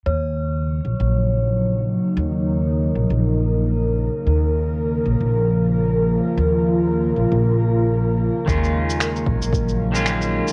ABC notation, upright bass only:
X:1
M:4/4
L:1/16
Q:"Swing 16ths" 1/4=114
K:Ebm
V:1 name="Upright bass" clef=bass
E,,4- E,, z B,,, B,,,6- B,,, z2 | E,,4- E,, z B,,, B,,,6- B,,, z2 | E,,4- E,, z B,,, B,,,6- B,,, z2 | E,,4- E,, z B,,, B,,,6- B,,, z2 |
E,,4- E,, z B,,, B,,,6- B,,, z2 |]